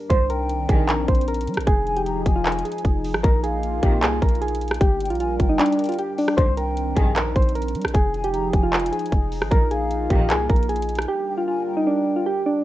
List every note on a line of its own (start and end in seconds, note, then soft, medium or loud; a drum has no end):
0.10 0.19 G1 medium
0.10 0.67 C2 loud
0.10 0.19 D#2 medium
0.10 0.19 D3 loud
0.10 1.66 D#3 medium
0.10 1.66 C4 medium
0.10 1.66 D4 medium
0.10 0.26 C5 loud
0.10 kick loud
0.10 closed hi-hat medium
0.30 0.67 A#4 medium
0.30 0.85 G5 medium
0.30 closed hi-hat medium
0.49 closed hi-hat medium
0.69 1.07 A#1 loud
0.69 0.97 C2 loud
0.69 0.97 G2 loud
0.69 0.97 D#3 loud
0.69 0.85 G#4 medium
0.69 kick loud
0.69 closed hi-hat medium
0.89 1.05 A#4 medium
0.89 clap loud
0.89 closed hi-hat medium
1.08 1.49 A#1 loud
1.08 1.25 C5 medium
1.08 kick medium
1.08 closed hi-hat soft
1.15 closed hi-hat medium
1.21 closed hi-hat medium
1.28 1.65 A#4 medium
1.28 closed hi-hat medium
1.34 closed hi-hat medium
1.41 closed hi-hat medium
1.47 1.59 G3 loud
1.47 closed hi-hat medium
1.54 1.67 A#1 loud
1.54 cross-stick loud
1.54 closed hi-hat medium
1.61 closed hi-hat medium
1.67 2.24 F1 loud
1.67 3.22 F3 medium
1.67 4.78 D#4 medium
1.67 1.95 G#4 loud
1.67 3.22 G#4 medium
1.67 kick loud
1.67 closed hi-hat medium
1.87 2.05 G#5 medium
1.87 closed hi-hat soft
1.97 2.05 G4 medium
1.97 closed hi-hat medium
2.06 2.34 G4 medium
2.06 2.25 A#5 medium
2.06 closed hi-hat medium
2.26 2.64 F1 loud
2.26 2.81 G#5 medium
2.26 kick medium
2.26 closed hi-hat medium
2.36 2.63 F4 medium
2.45 clap loud
2.45 closed hi-hat medium
2.52 closed hi-hat medium
2.59 closed hi-hat medium
2.65 3.20 G#4 medium
2.65 closed hi-hat medium
2.72 closed hi-hat medium
2.78 closed hi-hat medium
2.85 3.16 F1 loud
2.85 kick medium
2.85 closed hi-hat medium
3.04 open hi-hat medium
3.14 3.23 G#1 loud
3.14 cross-stick loud
3.23 3.32 A#1 medium
3.23 3.81 A#1 loud
3.23 3.32 F2 medium
3.23 3.32 D#3 loud
3.23 4.79 A#3 medium
3.23 4.79 F4 medium
3.23 3.40 A#4 loud
3.23 kick loud
3.23 closed hi-hat medium
3.44 3.80 G#4 medium
3.44 3.99 F5 medium
3.44 closed hi-hat medium
3.63 closed hi-hat medium
3.83 4.11 A#1 loud
3.83 4.04 A#1 loud
3.83 4.11 F2 loud
3.83 4.11 D#3 loud
3.83 3.99 G4 medium
3.83 kick medium
3.83 closed hi-hat medium
4.02 4.21 C2 loud
4.02 4.19 G#4 loud
4.02 clap loud
4.02 closed hi-hat medium
4.22 4.79 A#1 loud
4.22 4.39 A#4 medium
4.22 kick medium
4.22 closed hi-hat soft
4.29 closed hi-hat medium
4.35 closed hi-hat medium
4.41 4.78 G#4 medium
4.41 closed hi-hat medium
4.48 closed hi-hat medium
4.55 closed hi-hat medium
4.61 closed hi-hat medium
4.68 cross-stick loud
4.68 closed hi-hat medium
4.74 closed hi-hat medium
4.81 5.12 G1 loud
4.81 6.36 G3 medium
4.81 7.91 D4 medium
4.81 5.08 G4 loud
4.81 6.36 A#4 medium
4.81 kick loud
4.81 closed hi-hat medium
5.00 5.19 G5 medium
5.00 closed hi-hat medium
5.05 closed hi-hat medium
5.10 5.38 A#1 loud
5.10 5.18 F4 medium
5.10 closed hi-hat medium
5.15 closed hi-hat soft
5.20 5.48 F4 medium
5.20 5.39 G#5 medium
5.20 closed hi-hat medium
5.40 5.59 G1 loud
5.40 6.34 G5 medium
5.40 kick medium
5.40 closed hi-hat medium
5.49 5.58 D#4 medium
5.59 5.87 D4 medium
5.59 clap loud
5.59 closed hi-hat medium
5.66 closed hi-hat medium
5.72 closed hi-hat medium
5.79 closed hi-hat medium
5.84 closed hi-hat medium
5.86 closed hi-hat medium
5.89 5.97 F4 medium
5.89 closed hi-hat medium
5.92 closed hi-hat medium
5.94 closed hi-hat soft
5.99 6.15 G4 medium
5.99 closed hi-hat medium
6.18 6.35 D4 medium
6.18 open hi-hat medium
6.28 cross-stick loud
6.37 6.46 G1 loud
6.37 6.94 C2 loud
6.37 6.46 D#2 medium
6.37 6.46 D3 loud
6.37 7.93 D#3 medium
6.37 7.93 C4 medium
6.37 6.54 C5 loud
6.37 kick loud
6.37 closed hi-hat medium
6.57 6.94 A#4 medium
6.57 7.13 G5 medium
6.57 closed hi-hat medium
6.77 closed hi-hat medium
6.97 7.34 A#1 loud
6.97 7.25 C2 loud
6.97 7.24 G2 loud
6.97 7.25 D#3 loud
6.97 7.13 G#4 medium
6.97 kick loud
6.97 closed hi-hat medium
7.16 7.32 A#4 medium
7.16 clap loud
7.16 closed hi-hat medium
7.36 7.76 A#1 loud
7.36 7.52 C5 medium
7.36 kick medium
7.36 closed hi-hat soft
7.42 closed hi-hat medium
7.49 closed hi-hat medium
7.55 7.92 A#4 medium
7.55 closed hi-hat medium
7.62 closed hi-hat medium
7.68 closed hi-hat medium
7.75 7.86 G3 loud
7.75 closed hi-hat medium
7.82 7.94 A#1 loud
7.82 cross-stick loud
7.82 closed hi-hat medium
7.88 closed hi-hat medium
7.94 8.51 F1 loud
7.94 9.50 F3 medium
7.94 11.05 D#4 medium
7.94 8.22 G#4 loud
7.94 9.50 G#4 medium
7.94 kick loud
7.94 closed hi-hat medium
8.14 8.33 G#5 medium
8.14 closed hi-hat soft
8.24 8.32 G4 medium
8.24 closed hi-hat medium
8.34 8.61 G4 medium
8.34 8.52 A#5 medium
8.34 closed hi-hat medium
8.53 8.91 F1 loud
8.53 9.09 G#5 medium
8.53 kick loud
8.53 closed hi-hat medium
8.63 8.91 F4 medium
8.73 clap loud
8.73 closed hi-hat medium
8.80 closed hi-hat medium
8.86 closed hi-hat medium
8.92 9.48 G#4 medium
8.92 closed hi-hat medium
8.99 closed hi-hat medium
9.06 closed hi-hat medium
9.12 9.43 F1 loud
9.12 kick medium
9.12 closed hi-hat medium
9.32 open hi-hat medium
9.42 9.51 G#1 loud
9.42 cross-stick loud
9.51 9.60 A#1 medium
9.51 10.08 A#1 loud
9.51 9.60 F2 medium
9.51 9.60 D#3 loud
9.51 11.07 A#3 medium
9.51 11.07 F4 medium
9.51 9.67 A#4 loud
9.51 kick loud
9.51 closed hi-hat medium
9.71 10.08 G#4 medium
9.71 10.26 F5 medium
9.71 closed hi-hat medium
9.91 closed hi-hat medium
10.10 10.31 A#1 loud
10.10 10.38 A#1 loud
10.10 10.38 F2 loud
10.10 10.38 D#3 loud
10.10 10.27 G4 medium
10.10 kick medium
10.10 closed hi-hat medium
10.30 10.49 C2 loud
10.30 10.46 G#4 loud
10.30 clap loud
10.30 closed hi-hat medium
10.50 11.06 A#1 loud
10.50 10.66 A#4 medium
10.50 kick medium
10.50 closed hi-hat soft
10.56 closed hi-hat medium
10.63 closed hi-hat medium
10.69 11.06 G#4 medium
10.69 closed hi-hat medium
10.76 closed hi-hat medium
10.82 closed hi-hat medium
10.89 closed hi-hat medium
10.95 cross-stick loud
10.95 closed hi-hat medium
11.02 closed hi-hat medium
11.08 12.64 G3 medium
11.08 12.64 D4 medium
11.08 11.36 G4 loud
11.08 12.64 A#4 medium
11.28 11.47 G5 medium
11.37 11.46 F4 medium
11.48 11.75 F4 medium
11.48 11.66 G#5 medium
11.67 12.61 G5 medium
11.77 11.85 D#4 medium
11.87 12.14 D4 medium
12.16 12.24 F4 medium
12.26 12.42 G4 medium
12.46 12.62 D4 medium